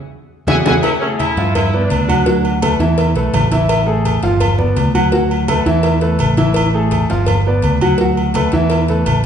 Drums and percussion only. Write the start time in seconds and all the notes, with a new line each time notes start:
0.47 low bongo, high conga, high timbale
0.66 low bongo, high conga, high timbale
0.83 cowbell, high conga, low agogo
1.02 high conga
1.19 cowbell, high conga, low agogo
1.37 cowbell
1.55 cowbell, high conga, low conga, low agogo
1.74 high conga
1.90 cowbell, high conga, low agogo
2.09 high conga, low agogo
2.26 cowbell, high conga
2.45 high conga, low agogo
2.62 cowbell, high conga, low agogo
2.80 cowbell, high conga
2.98 cowbell, high conga, low agogo
3.16 cowbell, high conga
3.34 cowbell, high conga, low timbale, low agogo
3.52 cowbell, high conga, low agogo
3.69 cowbell, high conga, low agogo
3.88 high conga
4.05 cowbell, high conga, low agogo
4.23 cowbell
4.40 cowbell, high conga, low conga, low agogo
4.59 high conga, low conga
4.77 cowbell, high conga, low agogo
4.95 high conga, low agogo
5.12 cowbell, high conga
5.31 high conga, low agogo
5.48 cowbell, high conga, low agogo
5.66 cowbell, high conga
5.83 cowbell, high conga, low agogo
6.01 cowbell, high conga
6.19 cowbell, high conga, low agogo
6.37 cowbell, high conga, low agogo
6.54 cowbell, high conga, low agogo
6.74 high conga
6.91 cowbell, high conga, low agogo
7.10 cowbell
7.26 cowbell, high conga, low conga, low agogo
7.46 high conga
7.62 cowbell, high conga, low agogo
7.81 high conga, low agogo
7.98 cowbell, high conga
8.17 high conga, low agogo
8.34 cowbell, high conga, low agogo
8.52 cowbell, high conga
8.70 cowbell, high conga, low agogo
8.88 cowbell, high conga
9.06 cowbell, high conga, low agogo